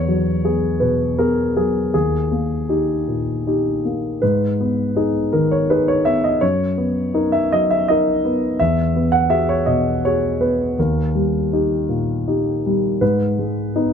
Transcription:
Already playing: E2 C#5
0.08 F#3
0.45 B3 G#4
0.80 B2 B4
1.19 B3 G#4 A#4
1.57 F#3 G#4
1.94 D#2 G#4
2.32 A#3
2.69 D#4 G4
3.08 A#2
3.47 D#4 G4
3.85 A#3
4.22 G#2 B4
4.61 B3
4.96 D#4 G#4
5.33 D#3 A#4
5.52 C#5
5.70 D#4 G#4 B4
5.88 C#5
6.05 B3 E5
6.24 D#5
6.41 F#2 C#5
6.78 B3
7.14 D#4 A#4
7.32 E5
7.52 F#3 D#5
7.71 E5
7.88 D#4 A#4 D#5
8.25 B3
8.60 E2 E5
8.96 B3
9.12 F#5
9.30 F#4 G#4 E5
9.49 C#5
9.66 B2 D#5
10.05 F#4 G#4 C#5
10.41 B3 B4
10.79 D#2 A#4
11.15 G3
11.53 D#4 G4
11.89 A#2
12.28 D#4 G4
12.66 G3
13.01 G#2 B4
13.39 G#3
13.76 B3 D#4

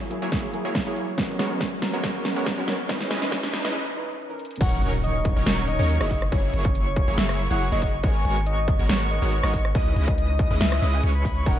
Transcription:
Already playing: F#3 A#3 E4 G#4 C#5, riser
0.10 F#3 A#3 E4 G#4, closed hi-hat
0.22 F#1 F#3 A#3 E4 G#4 C#5
0.32 F#3 A#3 E4 G#4 C#5, kick, snare, closed hi-hat
0.53 F#3 A#3 E4 G#4, closed hi-hat
0.65 F#1 F#3 A#3 E4 G#4 C#5
0.75 kick, snare, closed hi-hat
0.85 F#3 A#3 E4 G#4 C#5
0.96 closed hi-hat
1.17 F#3 G#3 B3 C#4 F#4 A#4 C#5, kick, snare, closed hi-hat
1.39 G#3 B3 F#4 A#4 C#5, snare, closed hi-hat
1.50 F#3 B3 C#4 A#4
1.61 kick, snare, closed hi-hat
1.81 F#3 B3 C#4 A#4, snare, closed hi-hat
1.93 G#1 G#3 B3 F#4 A#4 C#5
2.04 G#3 B3 F#4 A#4 C#5, kick, snare, closed hi-hat
2.24 F#3 B3 C#4 A#4, snare, closed hi-hat
2.36 G#3 B3 F#4 A#4 C#5
2.46 kick, snare, closed hi-hat
2.57 G#2 F#3 G#3 B3 C#4 F#4 A#4 C#5
2.68 snare, closed hi-hat
2.88 E3 G#3 C#4 D#4 E4 B4 D#5, kick, snare, closed hi-hat
3.01 snare
3.11 G#3 C#4 E4 B4 D#5, snare, closed hi-hat
3.21 E3 C#4 D#4 B4, snare
3.32 kick, snare, closed hi-hat
3.43 snare
3.53 E3 C#4 D#4 B4, snare, closed hi-hat
3.65 C#2 G#3 C#4 E4 B4 D#5, snare
3.95 E3 C#4 D#4 B4
4.28 E3 C#4 D#4 A#4
4.39 closed hi-hat
4.45 closed hi-hat
4.51 closed hi-hat
4.56 closed hi-hat
4.61 D#1 F#3 C#4 D#4 A#4 C#5 F#5 C#6, kick, closed hi-hat, crash, impact
4.82 D#1 F#3 C#4 D#4 A#4 C#5 C#6, closed hi-hat
5.04 D#5, closed hi-hat
5.25 kick, closed hi-hat
5.36 D#1 F#3 C#4 D#4 A#4 C#5 C#6
5.46 D#1 F#3 C#4 D#4 A#4 C#5 C#6, snare, closed hi-hat
5.68 D#5, closed hi-hat
5.79 D#2 F#3 C#4 D#4 A#4 C#5 C#6
5.89 closed hi-hat
6.01 F#1 F#3 A#3 E4 G#4 C#5 D#5 C#6, cross-stick
6.11 kick, open hi-hat
6.22 cross-stick
6.32 F#1 F#3 A#3 E4 G#4 C#5 C#6, kick, closed hi-hat
6.54 F#1 F#3 A#3 E4 G#4 C#5 C#6, closed hi-hat
6.65 C#5, kick
6.75 closed hi-hat
6.87 C#5
6.96 kick, closed hi-hat
7.08 F#1 F#3 A#3 E4 G#4 C#5 C#6
7.18 F#1 F#3 A#3 E4 G#4 C#5 E5 C#6, snare, closed hi-hat
7.29 cross-stick
7.39 closed hi-hat
7.51 F#1 F#3 A#3 E4 G#4 C#5 F#5 C#6
7.61 closed hi-hat
7.72 F#1 F#3 A#3 E4 G#4 C#5 D#5 C#6
7.82 kick, open hi-hat
8.03 G#1 G#3 B3 F#4 A#4 C#5 G#5 C#6, kick, closed hi-hat
8.25 G#1 G#3 B3 F#4 A#4 C#5 C#6, closed hi-hat
8.46 D#5, closed hi-hat
8.68 kick, closed hi-hat
8.79 G#1 G#3 B3 F#4 A#4 C#5 C#6
8.89 G#1 G#3 B3 F#4 A#4 C#5 C#6, snare, closed hi-hat
9.11 D#5, closed hi-hat
9.22 G#1 G#3 B3 F#4 A#4 C#5 C#6
9.32 closed hi-hat
9.43 G#1 G#3 B3 F#4 A#4 C#5 D#5 C#6, cross-stick
9.54 kick, open hi-hat
9.65 cross-stick
9.75 C#2 G#3 C#4 E4 B4 D#5 D#6, kick, closed hi-hat
9.96 C#2 G#3 C#4 E4 B4 D#5 D#6, closed hi-hat
10.08 D#5, kick
10.18 closed hi-hat
10.29 D#5
10.39 kick, closed hi-hat
10.50 C#2 G#3 C#4 E4 B4 D#5 D#6
10.61 C#2 G#3 C#4 E4 B4 D#5 E5 D#6, snare, closed hi-hat
10.72 cross-stick
10.82 C#2 G#3 C#4 E4 B4 D#5 D#6, closed hi-hat
10.93 G#5
11.03 C#2 G#3 C#4 E4 B4 C#5 C#6, closed hi-hat
11.15 B5
11.25 kick, open hi-hat
11.45 D#1 F#3 C#4 D#4 A#4 C#5 F#5 C#6, kick, closed hi-hat, ride

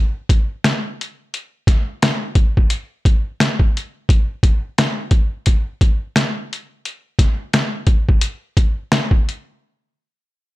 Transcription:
0.29 kick, closed hi-hat
0.64 snare, closed hi-hat
1.01 closed hi-hat
1.34 closed hi-hat
1.67 kick, snare, closed hi-hat
2.02 snare, closed hi-hat
2.35 kick, closed hi-hat
2.57 kick
2.70 closed hi-hat
3.05 kick, closed hi-hat
3.40 snare, closed hi-hat
3.60 kick
3.77 closed hi-hat
4.09 kick, closed hi-hat
4.43 kick, closed hi-hat
4.78 snare, closed hi-hat
5.11 kick, closed hi-hat
5.46 kick, closed hi-hat
5.81 kick, closed hi-hat
6.16 snare, closed hi-hat
6.53 closed hi-hat
6.85 closed hi-hat
7.19 kick, snare, closed hi-hat
7.53 snare, closed hi-hat
7.87 kick, closed hi-hat
8.09 kick
8.21 closed hi-hat
8.57 kick, closed hi-hat
8.92 snare, closed hi-hat
9.11 kick
9.29 closed hi-hat

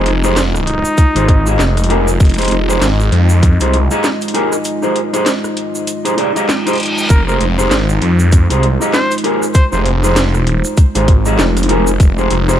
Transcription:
Already playing: F1 G#3 D#4 F4 D#5
0.06 closed hi-hat
0.24 D#4 G4 G#4 C5, shaker
0.37 snare, closed hi-hat, shaker
0.54 cross-stick, shaker
0.66 D#4, closed hi-hat
0.85 shaker
0.98 kick, closed hi-hat, shaker
1.15 G#1 D#4 G4 G#4 C5, closed hi-hat, shaker
1.28 kick, closed hi-hat
1.46 D#4 G4 G#4 D#5, shaker
1.59 F1, snare, shaker
1.77 cross-stick, closed hi-hat, shaker
1.84 closed hi-hat
1.89 D#4 G4 G#4 A#4, closed hi-hat
2.08 shaker
2.20 F1, kick, closed hi-hat, shaker
2.25 closed hi-hat
2.30 closed hi-hat
2.34 D#4 G4, closed hi-hat, shaker
2.38 G#4 C5, closed hi-hat
2.42 closed hi-hat
2.45 closed hi-hat
2.48 F1, closed hi-hat
2.51 closed hi-hat
2.68 D#4 G4 G#4 C5, shaker
2.81 G#1, snare, closed hi-hat, shaker
3.00 shaker
3.12 F2, closed hi-hat
3.29 shaker
3.43 kick, closed hi-hat, shaker
3.60 C2 D#4 G4 G#4 C5, closed hi-hat, shaker
3.73 closed hi-hat
3.91 D#4 G4 G#4 D#5, shaker
4.04 snare, shaker
4.21 closed hi-hat, shaker
4.28 closed hi-hat
4.34 D#4 G4 G#4 A#4, closed hi-hat
4.52 cross-stick, shaker
4.64 closed hi-hat, shaker
4.82 D#4 G4 G#4 C5, shaker
4.96 closed hi-hat
5.13 D#4 G4 G#4 C5, closed hi-hat, shaker
5.26 snare, closed hi-hat, shaker
5.44 cross-stick, shaker
5.57 closed hi-hat
5.75 shaker
5.87 closed hi-hat, reverse cymbal, shaker
6.05 D#4 G4 G#4 C5, closed hi-hat, shaker
6.17 D#4 G4 G#4 D5, closed hi-hat
6.35 D#4 G4 G#4 D#5, closed hi-hat, shaker
6.49 snare, shaker
6.66 D#4 G4 G#4 C5, cross-stick, closed hi-hat, shaker
6.73 closed hi-hat
6.75 closed hi-hat
6.78 closed hi-hat
6.80 closed hi-hat
6.83 closed hi-hat
6.86 closed hi-hat
6.98 shaker
7.09 F1 A#4 C5, kick, closed hi-hat, shaker
7.28 D#4 G4 G#4 A#4 C5, shaker
7.41 F1, closed hi-hat
7.58 D#4 G4 G#4 C5, shaker
7.71 G#1, snare, closed hi-hat, shaker
7.89 shaker
8.02 F2, closed hi-hat
8.19 shaker
8.32 kick, closed hi-hat, shaker
8.50 C2 D#4 G4 G#4 C5, closed hi-hat, shaker
8.63 closed hi-hat
8.80 D#4 G4 G#4 D#5, shaker
8.93 C5, snare, shaker
9.11 closed hi-hat, shaker
9.18 closed hi-hat
9.24 D#4 G4 G#4 A#4, closed hi-hat
9.42 cross-stick, shaker
9.54 C5, kick, closed hi-hat, shaker
9.72 F1 D#4 G4 G#4 C5, shaker
9.86 closed hi-hat
10.03 D#4 G4 G#4 C5, shaker
10.16 snare, closed hi-hat, shaker
10.34 E1, cross-stick, shaker
10.47 closed hi-hat
10.64 shaker
10.77 kick, closed hi-hat, shaker
10.95 G#1 D#4 G4 G#4 C5, closed hi-hat, shaker
11.08 kick, closed hi-hat
11.25 D#4 G4 G#4 D#5, shaker
11.39 F1, snare, shaker
11.57 cross-stick, closed hi-hat, shaker
11.63 closed hi-hat
11.69 D#4 G4 G#4 A#4, closed hi-hat
11.87 shaker
12.00 F1, kick, closed hi-hat, shaker
12.18 D#4 G4 G#4 C5, shaker
12.30 F1, closed hi-hat
12.48 D#4 G4 G#4 C5, shaker

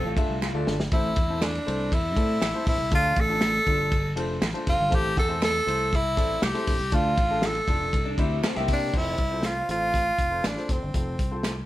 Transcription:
Already playing: A4
0.05 A1 A3 F4
0.17 A3 D4 F4 A4 E5, kick, ride
0.29 C2
0.42 finger snap, snare
0.54 D2 A3 D4 F4 A4 D5
0.67 G1, snare
0.80 snare
0.92 A1 A2 A3 C4 E4 A4 C5, kick, ride
1.16 E2, kick, ride
1.29 A3 C4 E4 A4 C5
1.42 D4, finger snap, snare, ride
1.55 ride
1.66 C2 A3 C4 E4 A4 C5, ride
1.92 E2 E4, kick, ride
2.16 A2 A3 C4 E4 A4 D5, kick, ride
2.42 A1, finger snap, snare, ride
2.54 A3 C4 E4 A4 C5
2.66 A#1 E4, kick, open hi-hat, ride
2.78 C2
2.91 D2 D3 A3 D4 F4 A4 D5, kick, hi-hat pedal, ride
3.16 A1, kick, ride
3.20 A4
3.29 A3 D4 F4 A4 D5
3.41 finger snap, snare, ride
3.67 G1 A3 D4 F4 A4 D5, kick, ride
3.92 kick, ride
4.16 F1 A3 D4 F4 A4 C5, ride
4.42 A1, finger snap, snare, ride
4.53 A3 D4 F4 A4 C5, ride
4.67 F1 F4, kick, snare, ride
4.80 G1
4.89 A1 A2 A3 C4 E4 A4 C5, kick, ride
4.95 G4
5.17 E2 A4, kick, ride
5.28 A3 C4 E4 A4 C5
5.42 A4, finger snap, snare, ride
5.66 C2 A3 C4 E4 A4 C5, ride
5.93 E4, kick, ride
6.17 A1 A3 C4 E4 A4 D5, kick, ride
6.42 C2 G4, finger snap, snare, ride
6.54 A3 C4 E4 A4 C5, snare, ride
6.67 A#1, kick, snare, open hi-hat, ride
6.80 C2
6.92 D2 D3 A3 D4 F4 A4 D5, kick, hi-hat pedal, ride
7.18 A1, kick, ride
7.30 A3 D4 F4 A4 F5
7.42 A4, finger snap, snare, ride
7.55 ride
7.67 F1 A3 D4 F4 A4 D5, kick, ride
7.93 C2 C3, kick, ride
8.06 D4
8.18 D2 G3 C4 E4 G4 C5 E5, kick, ride
8.43 C4 A4, finger snap, muted fingered electric bass stroke, snare, ride
8.56 C2 A#3 C4 E4 G4 C5 E5, snare, ride
8.68 C3, kick, snare, open hi-hat, ride
8.73 D4
8.93 F1 C4 F4 A4 C5, kick, crash
8.98 E4
9.18 C2, kick, closed hi-hat
9.31 C4 F4 A4 C5
9.43 F4, finger snap, snare, closed hi-hat
9.69 A1 C4 F4 A4 C5, closed hi-hat
9.94 kick, closed hi-hat
10.18 F1, kick, closed hi-hat
10.31 C4 F4 A4 C5
10.44 A1 D4, finger snap, snare, closed hi-hat
10.57 C4 F4 A4 C5, snare
10.69 F1 C4, kick, snare, closed hi-hat
10.82 G1
10.94 F1 C4 F4 A4 C5, kick, closed hi-hat
11.19 C2, kick, closed hi-hat
11.31 C4 F4 A4 C5
11.43 finger snap, snare, closed hi-hat

